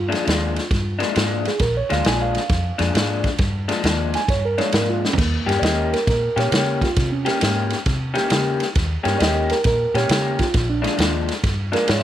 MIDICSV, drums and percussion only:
0, 0, Header, 1, 2, 480
1, 0, Start_track
1, 0, Tempo, 446761
1, 1724, Time_signature, 4, 2, 24, 8
1, 12925, End_track
2, 0, Start_track
2, 0, Title_t, "Drums"
2, 131, Note_on_c, 9, 51, 61
2, 150, Note_on_c, 9, 38, 37
2, 238, Note_off_c, 9, 51, 0
2, 257, Note_off_c, 9, 38, 0
2, 294, Note_on_c, 9, 51, 73
2, 314, Note_on_c, 9, 38, 107
2, 402, Note_off_c, 9, 51, 0
2, 421, Note_off_c, 9, 38, 0
2, 605, Note_on_c, 9, 51, 56
2, 624, Note_on_c, 9, 38, 35
2, 712, Note_off_c, 9, 51, 0
2, 731, Note_off_c, 9, 38, 0
2, 760, Note_on_c, 9, 36, 103
2, 761, Note_on_c, 9, 51, 76
2, 781, Note_on_c, 9, 38, 32
2, 868, Note_off_c, 9, 36, 0
2, 869, Note_off_c, 9, 51, 0
2, 888, Note_off_c, 9, 38, 0
2, 1075, Note_on_c, 9, 51, 59
2, 1094, Note_on_c, 9, 38, 33
2, 1183, Note_off_c, 9, 51, 0
2, 1202, Note_off_c, 9, 38, 0
2, 1243, Note_on_c, 9, 51, 79
2, 1262, Note_on_c, 9, 38, 112
2, 1350, Note_off_c, 9, 51, 0
2, 1369, Note_off_c, 9, 38, 0
2, 1562, Note_on_c, 9, 51, 57
2, 1581, Note_on_c, 9, 38, 36
2, 1669, Note_off_c, 9, 51, 0
2, 1689, Note_off_c, 9, 38, 0
2, 1714, Note_on_c, 9, 51, 86
2, 1719, Note_on_c, 9, 36, 115
2, 1733, Note_on_c, 9, 38, 35
2, 1821, Note_off_c, 9, 51, 0
2, 1826, Note_off_c, 9, 36, 0
2, 1840, Note_off_c, 9, 38, 0
2, 2043, Note_on_c, 9, 51, 59
2, 2062, Note_on_c, 9, 38, 36
2, 2151, Note_off_c, 9, 51, 0
2, 2170, Note_off_c, 9, 38, 0
2, 2198, Note_on_c, 9, 51, 72
2, 2217, Note_on_c, 9, 38, 109
2, 2305, Note_off_c, 9, 51, 0
2, 2324, Note_off_c, 9, 38, 0
2, 2521, Note_on_c, 9, 51, 60
2, 2540, Note_on_c, 9, 38, 35
2, 2628, Note_off_c, 9, 51, 0
2, 2648, Note_off_c, 9, 38, 0
2, 2680, Note_on_c, 9, 51, 75
2, 2683, Note_on_c, 9, 36, 109
2, 2699, Note_on_c, 9, 38, 35
2, 2787, Note_off_c, 9, 51, 0
2, 2790, Note_off_c, 9, 36, 0
2, 2807, Note_off_c, 9, 38, 0
2, 2995, Note_on_c, 9, 51, 68
2, 3015, Note_on_c, 9, 38, 35
2, 3103, Note_off_c, 9, 51, 0
2, 3122, Note_off_c, 9, 38, 0
2, 3170, Note_on_c, 9, 51, 91
2, 3189, Note_on_c, 9, 38, 111
2, 3277, Note_off_c, 9, 51, 0
2, 3296, Note_off_c, 9, 38, 0
2, 3479, Note_on_c, 9, 51, 65
2, 3482, Note_on_c, 9, 36, 84
2, 3499, Note_on_c, 9, 38, 31
2, 3587, Note_off_c, 9, 51, 0
2, 3589, Note_off_c, 9, 36, 0
2, 3606, Note_off_c, 9, 38, 0
2, 3637, Note_on_c, 9, 51, 77
2, 3644, Note_on_c, 9, 36, 119
2, 3656, Note_on_c, 9, 38, 35
2, 3744, Note_off_c, 9, 51, 0
2, 3751, Note_off_c, 9, 36, 0
2, 3764, Note_off_c, 9, 38, 0
2, 3962, Note_on_c, 9, 51, 69
2, 3981, Note_on_c, 9, 38, 39
2, 4069, Note_off_c, 9, 51, 0
2, 4088, Note_off_c, 9, 38, 0
2, 4122, Note_on_c, 9, 51, 70
2, 4142, Note_on_c, 9, 38, 101
2, 4230, Note_off_c, 9, 51, 0
2, 4249, Note_off_c, 9, 38, 0
2, 4445, Note_on_c, 9, 51, 66
2, 4464, Note_on_c, 9, 38, 33
2, 4552, Note_off_c, 9, 51, 0
2, 4571, Note_off_c, 9, 38, 0
2, 4603, Note_on_c, 9, 36, 110
2, 4604, Note_on_c, 9, 51, 78
2, 4623, Note_on_c, 9, 38, 35
2, 4711, Note_off_c, 9, 36, 0
2, 4711, Note_off_c, 9, 51, 0
2, 4731, Note_off_c, 9, 38, 0
2, 4923, Note_on_c, 9, 51, 53
2, 4943, Note_on_c, 9, 38, 33
2, 5031, Note_off_c, 9, 51, 0
2, 5050, Note_off_c, 9, 38, 0
2, 5077, Note_on_c, 9, 51, 82
2, 5096, Note_on_c, 9, 38, 113
2, 5184, Note_off_c, 9, 51, 0
2, 5203, Note_off_c, 9, 38, 0
2, 5423, Note_on_c, 9, 38, 59
2, 5516, Note_on_c, 9, 43, 84
2, 5530, Note_off_c, 9, 38, 0
2, 5566, Note_on_c, 9, 36, 115
2, 5570, Note_on_c, 9, 49, 81
2, 5570, Note_on_c, 9, 51, 78
2, 5589, Note_on_c, 9, 38, 33
2, 5623, Note_off_c, 9, 43, 0
2, 5673, Note_off_c, 9, 36, 0
2, 5677, Note_off_c, 9, 49, 0
2, 5677, Note_off_c, 9, 51, 0
2, 5697, Note_off_c, 9, 38, 0
2, 5896, Note_on_c, 9, 51, 61
2, 5916, Note_on_c, 9, 38, 36
2, 6004, Note_off_c, 9, 51, 0
2, 6023, Note_off_c, 9, 38, 0
2, 6048, Note_on_c, 9, 51, 77
2, 6067, Note_on_c, 9, 38, 102
2, 6156, Note_off_c, 9, 51, 0
2, 6175, Note_off_c, 9, 38, 0
2, 6377, Note_on_c, 9, 51, 62
2, 6396, Note_on_c, 9, 38, 32
2, 6485, Note_off_c, 9, 51, 0
2, 6504, Note_off_c, 9, 38, 0
2, 6526, Note_on_c, 9, 36, 108
2, 6526, Note_on_c, 9, 51, 84
2, 6545, Note_on_c, 9, 38, 36
2, 6633, Note_off_c, 9, 36, 0
2, 6633, Note_off_c, 9, 51, 0
2, 6653, Note_off_c, 9, 38, 0
2, 6849, Note_on_c, 9, 51, 65
2, 6868, Note_on_c, 9, 38, 33
2, 6956, Note_off_c, 9, 51, 0
2, 6976, Note_off_c, 9, 38, 0
2, 7006, Note_on_c, 9, 51, 98
2, 7025, Note_on_c, 9, 38, 119
2, 7113, Note_off_c, 9, 51, 0
2, 7133, Note_off_c, 9, 38, 0
2, 7322, Note_on_c, 9, 36, 84
2, 7324, Note_on_c, 9, 51, 59
2, 7344, Note_on_c, 9, 38, 37
2, 7429, Note_off_c, 9, 36, 0
2, 7432, Note_off_c, 9, 51, 0
2, 7451, Note_off_c, 9, 38, 0
2, 7483, Note_on_c, 9, 51, 89
2, 7486, Note_on_c, 9, 36, 114
2, 7502, Note_on_c, 9, 38, 36
2, 7590, Note_off_c, 9, 51, 0
2, 7593, Note_off_c, 9, 36, 0
2, 7609, Note_off_c, 9, 38, 0
2, 7799, Note_on_c, 9, 51, 69
2, 7819, Note_on_c, 9, 38, 35
2, 7907, Note_off_c, 9, 51, 0
2, 7926, Note_off_c, 9, 38, 0
2, 7963, Note_on_c, 9, 51, 92
2, 7982, Note_on_c, 9, 38, 108
2, 8070, Note_off_c, 9, 51, 0
2, 8089, Note_off_c, 9, 38, 0
2, 8277, Note_on_c, 9, 51, 64
2, 8296, Note_on_c, 9, 38, 34
2, 8384, Note_off_c, 9, 51, 0
2, 8404, Note_off_c, 9, 38, 0
2, 8443, Note_on_c, 9, 51, 83
2, 8446, Note_on_c, 9, 36, 106
2, 8462, Note_on_c, 9, 38, 34
2, 8550, Note_off_c, 9, 51, 0
2, 8554, Note_off_c, 9, 36, 0
2, 8569, Note_off_c, 9, 38, 0
2, 8760, Note_on_c, 9, 51, 55
2, 8779, Note_on_c, 9, 38, 36
2, 8867, Note_off_c, 9, 51, 0
2, 8886, Note_off_c, 9, 38, 0
2, 8919, Note_on_c, 9, 51, 92
2, 8938, Note_on_c, 9, 38, 123
2, 9026, Note_off_c, 9, 51, 0
2, 9046, Note_off_c, 9, 38, 0
2, 9240, Note_on_c, 9, 51, 58
2, 9260, Note_on_c, 9, 38, 35
2, 9348, Note_off_c, 9, 51, 0
2, 9367, Note_off_c, 9, 38, 0
2, 9406, Note_on_c, 9, 51, 86
2, 9409, Note_on_c, 9, 36, 109
2, 9425, Note_on_c, 9, 38, 37
2, 9513, Note_off_c, 9, 51, 0
2, 9516, Note_off_c, 9, 36, 0
2, 9532, Note_off_c, 9, 38, 0
2, 9725, Note_on_c, 9, 51, 65
2, 9744, Note_on_c, 9, 38, 36
2, 9832, Note_off_c, 9, 51, 0
2, 9851, Note_off_c, 9, 38, 0
2, 9888, Note_on_c, 9, 51, 76
2, 9908, Note_on_c, 9, 38, 102
2, 9996, Note_off_c, 9, 51, 0
2, 10015, Note_off_c, 9, 38, 0
2, 10203, Note_on_c, 9, 51, 60
2, 10222, Note_on_c, 9, 38, 37
2, 10310, Note_off_c, 9, 51, 0
2, 10330, Note_off_c, 9, 38, 0
2, 10358, Note_on_c, 9, 51, 80
2, 10369, Note_on_c, 9, 36, 114
2, 10378, Note_on_c, 9, 38, 34
2, 10466, Note_off_c, 9, 51, 0
2, 10476, Note_off_c, 9, 36, 0
2, 10485, Note_off_c, 9, 38, 0
2, 10691, Note_on_c, 9, 51, 57
2, 10710, Note_on_c, 9, 38, 36
2, 10798, Note_off_c, 9, 51, 0
2, 10817, Note_off_c, 9, 38, 0
2, 10844, Note_on_c, 9, 51, 93
2, 10864, Note_on_c, 9, 38, 126
2, 10952, Note_off_c, 9, 51, 0
2, 10971, Note_off_c, 9, 38, 0
2, 11162, Note_on_c, 9, 51, 69
2, 11167, Note_on_c, 9, 36, 82
2, 11181, Note_on_c, 9, 38, 36
2, 11269, Note_off_c, 9, 51, 0
2, 11274, Note_off_c, 9, 36, 0
2, 11288, Note_off_c, 9, 38, 0
2, 11322, Note_on_c, 9, 51, 88
2, 11329, Note_on_c, 9, 36, 109
2, 11342, Note_on_c, 9, 38, 37
2, 11430, Note_off_c, 9, 51, 0
2, 11437, Note_off_c, 9, 36, 0
2, 11449, Note_off_c, 9, 38, 0
2, 11649, Note_on_c, 9, 51, 70
2, 11668, Note_on_c, 9, 38, 37
2, 11756, Note_off_c, 9, 51, 0
2, 11776, Note_off_c, 9, 38, 0
2, 11803, Note_on_c, 9, 51, 80
2, 11822, Note_on_c, 9, 38, 104
2, 11911, Note_off_c, 9, 51, 0
2, 11930, Note_off_c, 9, 38, 0
2, 12126, Note_on_c, 9, 51, 61
2, 12145, Note_on_c, 9, 38, 34
2, 12233, Note_off_c, 9, 51, 0
2, 12252, Note_off_c, 9, 38, 0
2, 12287, Note_on_c, 9, 36, 103
2, 12287, Note_on_c, 9, 51, 90
2, 12307, Note_on_c, 9, 38, 36
2, 12395, Note_off_c, 9, 36, 0
2, 12395, Note_off_c, 9, 51, 0
2, 12414, Note_off_c, 9, 38, 0
2, 12605, Note_on_c, 9, 51, 62
2, 12624, Note_on_c, 9, 38, 35
2, 12712, Note_off_c, 9, 51, 0
2, 12732, Note_off_c, 9, 38, 0
2, 12760, Note_on_c, 9, 51, 88
2, 12779, Note_on_c, 9, 38, 115
2, 12868, Note_off_c, 9, 51, 0
2, 12887, Note_off_c, 9, 38, 0
2, 12925, End_track
0, 0, End_of_file